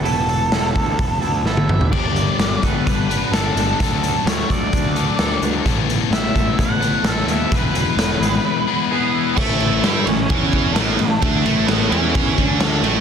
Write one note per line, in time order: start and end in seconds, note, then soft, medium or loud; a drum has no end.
0.03 0.48 E1 medium
0.03 0.50 E3 medium
0.03 0.29 B3 medium
0.03 0.28 E4 medium
0.03 1.41 A4 medium
0.03 0.27 A4 medium
0.03 open hi-hat medium
0.28 0.51 B3 medium
0.28 0.51 E4 medium
0.28 0.52 A4 medium
0.28 open hi-hat soft
0.50 0.73 E1 medium
0.50 0.98 E3 medium
0.50 0.76 B3 medium
0.50 0.75 E4 medium
0.50 0.74 A4 medium
0.50 snare loud
0.50 open hi-hat medium
0.75 0.98 D2 medium
0.75 1.22 B3 medium
0.75 1.21 E4 medium
0.75 1.20 A4 medium
0.75 kick medium
0.75 open hi-hat medium
0.99 1.19 E1 medium
0.99 kick medium
0.99 open hi-hat medium
1.20 1.43 D2 medium
1.20 1.44 B3 soft
1.20 1.45 E4 medium
1.20 1.46 A4 medium
1.20 open hi-hat soft
1.44 1.89 G#1 medium
1.44 1.90 E3 medium
1.44 1.91 B3 medium
1.44 1.91 E4 medium
1.44 1.92 A4 medium
1.44 1.91 E5 medium
1.44 snare medium
1.57 high tom medium
1.69 mid tom medium
1.81 floor tom medium
1.91 2.27 G1 medium
1.91 3.08 G3 medium
1.91 2.15 G3 medium
1.91 3.08 B3 medium
1.91 3.09 D4 medium
1.91 3.08 G4 medium
1.91 2.64 D5 loud
1.91 kick loud
1.91 crash medium
2.16 3.33 G3 medium
2.16 closed hi-hat medium
2.38 2.56 G1 medium
2.38 3.09 B3 medium
2.38 snare loud
2.38 closed hi-hat medium
2.63 2.80 G1 medium
2.63 3.33 A4 medium
2.63 2.84 B4 medium
2.63 kick medium
2.63 closed hi-hat medium
2.85 3.21 G1 medium
2.85 3.56 D4 medium
2.85 3.32 B4 medium
2.85 kick medium
2.85 closed hi-hat medium
3.09 3.31 G3 medium
3.09 3.80 B3 medium
3.09 3.32 B3 medium
3.09 3.32 D4 medium
3.09 3.31 G4 medium
3.09 closed hi-hat medium
3.32 3.49 G1 medium
3.32 3.78 G3 medium
3.32 3.78 B3 medium
3.32 3.79 D4 medium
3.32 3.79 G4 medium
3.32 3.80 A4 medium
3.32 4.48 A4 medium
3.32 snare loud
3.32 closed hi-hat medium
3.55 3.73 G1 medium
3.55 3.80 D4 medium
3.55 closed hi-hat medium
3.80 4.15 D2 medium
3.80 4.95 D3 medium
3.80 4.96 D3 medium
3.80 4.95 F#3 medium
3.80 4.95 A3 medium
3.80 4.96 D4 medium
3.80 4.26 A4 medium
3.80 4.95 A4 medium
3.80 kick loud
3.80 closed hi-hat medium
4.03 5.19 F#3 medium
4.03 closed hi-hat medium
4.25 4.43 D2 medium
4.25 4.94 A3 medium
4.25 4.50 C#5 medium
4.25 snare medium
4.25 closed hi-hat medium
4.49 4.67 D2 medium
4.49 5.18 A4 medium
4.49 5.39 D5 medium
4.49 kick medium
4.49 closed hi-hat medium
4.72 5.07 D2 medium
4.72 5.41 D4 medium
4.72 kick loud
4.72 closed hi-hat medium
4.96 5.18 D3 medium
4.96 5.18 F#3 medium
4.96 5.64 A3 medium
4.96 5.19 A3 medium
4.96 5.18 D4 medium
4.96 5.18 A4 medium
4.96 closed hi-hat medium
5.19 5.36 D2 medium
5.19 5.64 D3 medium
5.19 5.64 F#3 medium
5.19 5.64 A3 medium
5.19 5.65 D4 medium
5.19 5.66 A4 medium
5.19 snare loud
5.19 closed hi-hat medium
5.42 5.59 D2 medium
5.42 5.66 D4 medium
5.42 closed hi-hat medium
5.65 6.00 A1 medium
5.65 6.80 A3 medium
5.65 5.87 A3 medium
5.65 6.81 B3 medium
5.65 6.82 E4 medium
5.65 6.80 A4 loud
5.65 kick loud
5.65 closed hi-hat medium
5.88 7.05 A3 medium
5.88 closed hi-hat medium
6.11 6.29 A1 medium
6.11 6.80 B3 medium
6.11 6.60 E5 medium
6.11 snare loud
6.11 closed hi-hat medium
6.35 6.53 A1 medium
6.35 7.04 A4 medium
6.35 kick medium
6.35 closed hi-hat medium
6.57 6.93 A1 medium
6.57 7.28 E4 medium
6.57 7.14 F#5 loud
6.57 kick loud
6.57 closed hi-hat medium
6.81 7.03 A3 medium
6.81 7.51 B3 medium
6.81 7.04 B3 medium
6.81 7.06 E4 medium
6.81 7.03 A4 medium
6.81 closed hi-hat medium
7.03 7.21 A1 medium
7.03 7.50 A3 medium
7.03 7.51 B3 medium
7.03 7.52 E4 medium
7.03 7.51 A4 medium
7.03 snare loud
7.03 closed hi-hat medium
7.14 7.31 E5 loud
7.27 7.45 D#2 medium
7.27 8.44 E4 medium
7.27 closed hi-hat medium
7.31 7.54 E5 medium
7.50 7.86 E1 medium
7.50 8.66 E3 medium
7.50 8.68 E3 medium
7.50 8.66 G#3 medium
7.50 8.66 B3 medium
7.50 8.67 E4 medium
7.50 8.66 G#4 loud
7.50 kick loud
7.50 closed hi-hat medium
7.55 8.88 B4 medium
7.75 8.90 G#3 medium
7.75 closed hi-hat medium
7.97 8.14 E1 medium
7.97 8.67 B3 medium
7.97 snare loud
7.97 closed hi-hat medium
8.20 8.38 G#1 medium
8.20 8.90 G#4 medium
8.20 closed hi-hat medium
8.44 9.13 E4 medium
8.67 8.89 E3 medium
8.67 8.90 G#3 medium
8.67 9.37 B3 medium
8.67 8.90 B3 medium
8.67 8.90 E4 medium
8.67 8.89 G#4 medium
8.90 9.35 E3 medium
8.90 9.36 G#3 medium
8.90 9.36 B3 medium
8.90 9.35 B3 medium
8.90 9.37 E4 medium
8.90 9.37 G#4 medium
8.90 9.39 B4 medium
9.14 9.37 E4 medium
9.37 9.80 A1 medium
9.37 11.21 A2 medium
9.37 9.83 A2 medium
9.37 9.83 A3 medium
9.37 10.03 E4 medium
9.37 10.02 E5 loud
9.37 kick loud
9.37 crash loud
9.60 11.45 E4 medium
9.60 ride medium
9.83 10.04 G2 medium
9.83 10.06 G3 medium
9.83 10.99 A3 medium
9.83 10.06 G4 loud
9.83 snare loud
9.83 ride medium
10.05 10.28 A1 medium
10.05 10.25 A2 medium
10.05 10.53 E3 medium
10.05 10.29 C#4 medium
10.05 10.25 C#5 medium
10.05 ride medium
10.26 10.73 E2 medium
10.26 10.75 C#4 medium
10.26 10.73 C#4 medium
10.26 10.72 C#5 loud
10.26 ride medium
10.30 10.75 E3 loud
10.30 10.76 E4 loud
10.30 kick loud
10.53 11.91 E3 medium
10.53 kick medium
10.53 ride medium
10.72 10.97 A1 medium
10.72 11.19 B3 medium
10.72 12.61 C#4 medium
10.72 11.21 B4 medium
10.72 snare loud
10.72 ride medium
10.77 10.99 A2 medium
10.77 10.99 A3 medium
10.99 11.20 A1 medium
10.99 11.18 A2 medium
10.99 11.68 A3 medium
10.99 ride medium
11.18 11.43 D2 medium
11.18 13.01 A2 medium
11.18 11.63 A4 medium
11.22 11.45 D3 medium
11.22 11.65 A3 medium
11.22 11.45 D4 loud
11.22 kick loud
11.22 ride loud
11.45 11.88 A1 medium
11.45 11.91 A2 medium
11.45 11.91 A3 loud
11.45 13.01 E4 medium
11.45 ride medium
11.66 12.83 A3 medium
11.66 11.90 B3 medium
11.66 11.89 B4 medium
11.66 snare loud
11.66 ride loud
11.90 12.34 E2 medium
11.90 12.37 E3 medium
11.90 12.57 C#4 medium
11.90 12.37 E4 loud
11.90 12.56 C#5 medium
11.90 ride medium
12.15 kick loud
12.15 ride loud
12.37 12.80 D2 medium
12.37 12.83 D3 medium
12.37 13.01 E3 medium
12.37 12.83 D4 loud
12.37 kick medium
12.37 ride medium
12.60 13.01 C#4 medium
12.60 snare loud
12.60 ride loud
12.83 13.01 A1 medium
12.83 13.01 A2 medium
12.83 13.01 A3 medium
12.83 13.01 A3 loud
12.83 ride medium